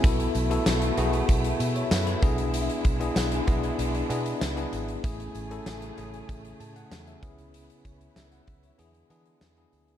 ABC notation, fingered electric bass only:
X:1
M:4/4
L:1/8
Q:1/4=96
K:Emix
V:1 name="Fingered electric bass" clef=bass
B,,, B,,, B,,, B,,, B,,, B,, F,, B,,,- | B,,, B,,, B,,, B,,, B,,, B,, C,, G,,, | A,,, A,,, A,,, A,,, A,,, A,, E,, C,,- | C,, C,, C,, C,, E,, E, E,, D,, |]